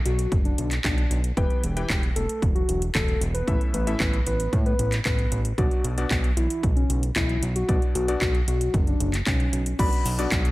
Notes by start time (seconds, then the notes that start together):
0.05 B1 F#4, closed hi-hat
0.19 closed hi-hat
0.32 F#1, kick, closed hi-hat
0.45 D4, closed hi-hat
0.58 B1, closed hi-hat
0.71 clap, closed hi-hat
0.84 B1 D4, kick, clap, closed hi-hat
0.98 closed hi-hat
1.11 B1, closed hi-hat
1.24 closed hi-hat
1.37 E1 E3 E4 G4 B4 G5, kick, closed hi-hat
1.50 closed hi-hat
1.63 E1, closed hi-hat
1.77 E3 E4 G4 B4 G5, closed hi-hat
1.90 E1, kick, clap, closed hi-hat
2.03 closed hi-hat
2.16 E1 A4, closed hi-hat
2.29 closed hi-hat
2.42 E1, kick, closed hi-hat
2.55 F#4, closed hi-hat
2.69 E1, closed hi-hat
2.82 closed hi-hat
2.94 E1 A4, kick, clap, closed hi-hat
3.08 closed hi-hat
3.21 E1, closed hi-hat
3.34 B4, closed hi-hat
3.47 A1 A2 C#4 E4 A4 E5, kick, closed hi-hat
3.61 closed hi-hat
3.74 A1 B4, closed hi-hat
3.87 A2 C#4 E4 A4 E5, closed hi-hat
4.00 A1 B4, kick, clap, closed hi-hat
4.13 closed hi-hat
4.26 A1 B4, closed hi-hat
4.40 closed hi-hat
4.53 A2, kick, closed hi-hat
4.66 B4, closed hi-hat
4.79 A1, closed hi-hat
4.92 clap, closed hi-hat
5.05 A1 B4, kick, clap, closed hi-hat
5.19 closed hi-hat
5.32 A1, closed hi-hat
5.45 closed hi-hat
5.58 B1 B2 B3 D4 F#4 D5, kick, closed hi-hat
5.71 closed hi-hat
5.84 B1, closed hi-hat
5.98 B2 B3 D4 F#4 D5, closed hi-hat
6.11 B1, kick, clap, closed hi-hat
6.24 closed hi-hat
6.37 B1 E4, closed hi-hat
6.50 closed hi-hat
6.63 B1, kick, closed hi-hat
6.76 C#4, closed hi-hat
6.90 B1, closed hi-hat
7.03 closed hi-hat
7.16 B1 E4, kick, clap, closed hi-hat
7.29 closed hi-hat
7.42 B1, closed hi-hat
7.56 F#4, closed hi-hat
7.69 B1 B2 B3 D4 F#4 D5, kick, closed hi-hat
7.82 closed hi-hat
7.95 B1 F#4, closed hi-hat
8.08 B2 B3 D4 F#4 D5, closed hi-hat
8.21 B1 F#4, kick, clap, closed hi-hat
8.35 closed hi-hat
8.48 B1 F#4, closed hi-hat
8.61 closed hi-hat
8.74 F#1, kick, closed hi-hat
8.87 D4, closed hi-hat
9.00 F#1, closed hi-hat
9.14 clap, closed hi-hat
9.26 B1 C#4, kick, clap, closed hi-hat
9.40 closed hi-hat
9.53 B1, closed hi-hat
9.66 closed hi-hat
9.79 B1 B2 B3 D4 F#4 D5 B5, kick, closed hi-hat, crash, cabasa
9.93 closed hi-hat, cabasa
10.05 B1, open hi-hat, cabasa
10.19 B2 B3 D4 F#4 D5, closed hi-hat, cabasa
10.32 B1, kick, clap, closed hi-hat, cabasa
10.45 closed hi-hat, cabasa